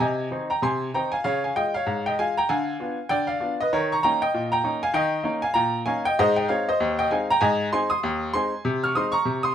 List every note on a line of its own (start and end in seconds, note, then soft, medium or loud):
0.00 0.27 C3 medium
0.00 0.46 D#5 medium
0.00 0.39 G#5 loud
0.31 0.48 D#3 medium
0.31 0.49 C4 medium
0.31 0.49 D#4 medium
0.50 0.62 G5 medium
0.50 0.63 A#5 medium
0.62 0.89 C3 medium
0.62 0.92 G#5 medium
0.62 0.88 C6 loud
0.94 1.11 D#3 soft
0.94 1.12 C4 medium
0.94 1.12 D#4 medium
0.94 1.11 G5 medium
0.94 1.12 A#5 medium
1.12 1.23 F5 medium
1.12 1.25 G#5 loud
1.24 1.51 C#3 medium
1.24 1.42 C#5 medium
1.24 1.42 F5 loud
1.44 1.56 F5 medium
1.44 1.56 G#5 medium
1.56 1.73 G#3 medium
1.56 1.73 F4 medium
1.56 1.73 D#5 medium
1.56 1.74 G5 loud
1.74 2.04 C#5 medium
1.74 2.03 F5 loud
1.86 2.13 G#2 medium
2.06 2.18 D#5 medium
2.06 2.18 G5 medium
2.19 2.35 G#3 medium
2.19 2.36 F4 medium
2.19 2.35 F5 medium
2.19 2.36 G#5 loud
2.37 2.49 G5 medium
2.37 2.49 A#5 loud
2.49 2.75 D3 loud
2.49 3.07 F5 medium
2.49 3.07 G#5 loud
2.80 2.97 B3 medium
2.80 2.97 D4 soft
2.80 2.97 F4 medium
3.09 3.36 D3 medium
3.09 3.27 D5 medium
3.09 3.28 G5 loud
3.27 3.57 D5 medium
3.27 3.52 F5 medium
3.40 3.58 B3 soft
3.40 3.58 D4 medium
3.40 3.58 F4 medium
3.61 3.73 B4 medium
3.61 3.73 D#5 loud
3.73 3.99 D#3 medium
3.73 3.90 A#4 medium
3.73 3.90 C#5 medium
3.92 4.02 A#5 medium
3.92 4.04 C#6 medium
4.03 4.21 A#3 medium
4.03 4.21 C#4 medium
4.03 4.21 D#4 medium
4.03 4.20 G5 medium
4.03 4.21 A#5 loud
4.22 4.50 D#5 medium
4.22 4.46 G5 loud
4.34 4.60 A#2 medium
4.52 4.81 G5 medium
4.52 4.81 A#5 loud
4.64 4.81 A#3 soft
4.64 4.81 C#4 soft
4.64 4.82 D#4 medium
4.83 4.95 F5 medium
4.83 4.96 G#5 loud
4.94 5.21 D#3 loud
4.94 5.41 D#5 medium
4.94 5.34 G5 loud
5.23 5.41 A#3 medium
5.23 5.41 C#4 medium
5.23 5.42 D#4 medium
5.42 5.56 F5 medium
5.42 5.56 G#5 loud
5.54 5.82 A#2 medium
5.54 5.85 G5 medium
5.54 5.80 A#5 loud
5.86 6.04 A#3 medium
5.86 6.04 C#4 medium
5.86 6.04 D#4 medium
5.86 6.04 F5 medium
5.86 6.05 G#5 loud
6.05 6.18 D#5 medium
6.05 6.19 G5 loud
6.19 6.45 G#2 loud
6.19 6.36 C5 medium
6.19 6.36 D#5 loud
6.36 6.49 D#5 medium
6.36 6.50 G5 loud
6.48 6.67 G#3 medium
6.48 6.67 C4 medium
6.48 6.67 D#4 medium
6.48 6.66 C#5 medium
6.48 6.67 F5 medium
6.69 6.97 C5 medium
6.69 6.97 D#5 loud
6.80 7.07 D#2 medium
6.99 7.11 D#5 medium
6.99 7.12 G5 loud
7.11 7.28 G#3 medium
7.11 7.29 C4 medium
7.11 7.29 D#4 medium
7.11 7.28 F5 medium
7.11 7.29 G#5 medium
7.30 7.43 G5 medium
7.30 7.43 A#5 loud
7.41 7.68 G#2 loud
7.41 7.71 D#5 medium
7.41 7.71 G#5 loud
7.73 7.90 G#3 medium
7.73 7.90 C4 medium
7.73 7.90 D#4 medium
7.73 7.90 G#5 medium
7.73 7.89 C6 loud
7.90 8.31 C6 medium
7.90 8.25 D#6 loud
8.03 8.30 D#2 loud
8.34 8.51 G#3 medium
8.34 8.52 C4 medium
8.34 8.52 D#4 medium
8.34 8.80 G#5 medium
8.34 8.80 C6 loud
8.65 8.91 C3 loud
8.84 8.96 C#6 medium
8.84 8.96 F6 loud
8.95 9.12 G#3 medium
8.95 9.13 C4 medium
8.95 9.13 D#4 medium
8.95 9.13 C6 medium
8.95 9.14 D#6 loud
9.12 9.42 A#5 medium
9.12 9.42 C#6 loud
9.25 9.52 C3 medium
9.43 9.55 C6 medium
9.43 9.55 D#6 loud